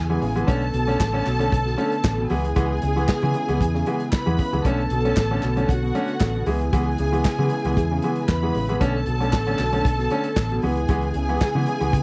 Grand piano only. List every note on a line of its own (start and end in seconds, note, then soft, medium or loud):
0.09 0.22 E3 medium
0.09 0.22 G#3 medium
0.09 0.22 B3 medium
0.22 0.35 C#3 medium
0.35 0.48 E3 medium
0.35 0.48 G#3 medium
0.35 0.48 B3 medium
0.47 0.61 D3 medium
0.47 0.61 A3 medium
0.47 0.61 C#4 medium
0.74 0.88 B2 medium
0.87 0.99 D3 medium
0.87 1.00 A3 medium
0.87 1.00 C#4 medium
1.13 1.25 D3 medium
1.13 1.26 A3 medium
1.13 1.26 C#4 medium
1.26 1.40 B2 medium
1.39 1.52 D3 medium
1.39 1.51 A3 medium
1.39 1.51 C#4 medium
1.52 1.58 A3 soft
1.52 1.58 C#4 soft
1.66 1.78 B2 medium
1.77 1.91 D3 medium
1.77 1.92 A3 medium
1.77 1.92 C#4 medium
2.04 2.10 A3 soft
2.04 2.10 C#4 soft
2.18 2.30 B2 medium
2.30 2.44 E3 medium
2.30 2.44 G#3 medium
2.30 2.44 B3 medium
2.56 2.70 E3 medium
2.56 2.70 G#3 medium
2.56 2.70 B3 loud
2.82 2.96 C#3 medium
2.96 3.08 E3 medium
2.96 3.08 G#3 medium
2.96 3.09 B3 medium
3.22 3.34 E3 medium
3.22 3.35 G#3 medium
3.22 3.35 B3 medium
3.34 3.48 C#3 medium
3.48 3.60 E3 medium
3.48 3.59 G#3 medium
3.48 3.59 B3 medium
3.61 3.66 G#3 soft
3.61 3.66 B3 soft
3.74 3.87 C#3 medium
3.87 4.00 E3 medium
3.87 4.00 G#3 medium
3.87 4.01 B3 medium
4.26 4.38 E3 medium
4.26 4.39 G#3 medium
4.26 4.39 B3 medium
4.39 4.53 C#3 medium
4.53 4.65 E3 medium
4.53 4.65 G#3 medium
4.53 4.65 B3 medium
4.65 4.79 D3 medium
4.65 4.79 A3 medium
4.65 4.79 C#4 loud
4.92 5.05 B2 medium
5.05 5.17 D3 medium
5.05 5.17 A3 medium
5.05 5.17 C#4 medium
5.31 5.43 D3 medium
5.31 5.43 A3 medium
5.31 5.43 C#4 medium
5.43 5.57 B2 medium
5.56 5.69 D3 medium
5.56 5.68 A3 medium
5.56 5.68 C#4 medium
5.69 5.75 A3 soft
5.69 5.75 C#4 soft
5.83 5.95 B2 medium
5.95 6.09 D3 medium
5.95 6.09 A3 medium
5.95 6.09 C#4 medium
6.21 6.27 A3 soft
6.21 6.27 C#4 soft
6.35 6.47 B2 medium
6.47 6.61 E3 medium
6.47 6.61 G#3 medium
6.47 6.61 B3 medium
6.73 6.87 E3 medium
6.73 6.87 G#3 medium
6.73 6.87 B3 loud
6.99 7.13 C#3 medium
7.12 7.25 E3 medium
7.12 7.25 G#3 medium
7.12 7.25 B3 medium
7.39 7.51 E3 medium
7.39 7.51 G#3 medium
7.39 7.51 B3 medium
7.51 7.65 C#3 medium
7.65 7.77 E3 medium
7.65 7.76 G#3 medium
7.65 7.76 B3 medium
7.77 7.83 G#3 soft
7.77 7.83 B3 soft
7.91 8.03 C#3 medium
8.04 8.17 E3 medium
8.04 8.17 G#3 medium
8.04 8.17 B3 medium
8.43 8.55 E3 medium
8.43 8.55 G#3 medium
8.43 8.55 B3 medium
8.55 8.69 C#3 medium
8.69 8.81 E3 medium
8.69 8.81 G#3 medium
8.69 8.82 B3 medium
8.80 8.95 D3 medium
8.80 8.95 A3 medium
8.80 8.95 C#4 loud
9.07 9.21 B2 soft
9.20 9.33 D3 medium
9.20 9.33 A3 medium
9.20 9.33 C#4 medium
9.46 9.59 D3 medium
9.46 9.59 A3 medium
9.46 9.59 C#4 medium
9.59 9.73 B2 medium
9.72 9.85 D3 medium
9.72 9.83 A3 medium
9.72 9.83 C#4 medium
9.85 9.91 A3 soft
9.85 9.91 C#4 soft
9.99 10.11 B2 medium
10.11 10.25 D3 medium
10.11 10.25 A3 medium
10.11 10.25 C#4 medium
10.37 10.43 A3 soft
10.37 10.43 C#4 soft
10.51 10.63 B2 medium
10.63 10.77 E3 medium
10.63 10.77 G#3 medium
10.63 10.77 B3 medium
10.89 11.03 E3 medium
10.89 11.03 G#3 medium
10.89 11.03 B3 medium
11.15 11.29 C#3 medium
11.29 11.41 E3 medium
11.29 11.41 G#3 medium
11.29 11.41 B3 medium
11.55 11.67 E3 medium
11.55 11.67 G#3 medium
11.55 11.67 B3 medium
11.68 11.81 C#3 medium
11.80 11.93 E3 medium
11.80 11.91 G#3 medium
11.80 11.91 B3 medium
11.92 11.98 G#3 soft
11.92 11.98 B3 soft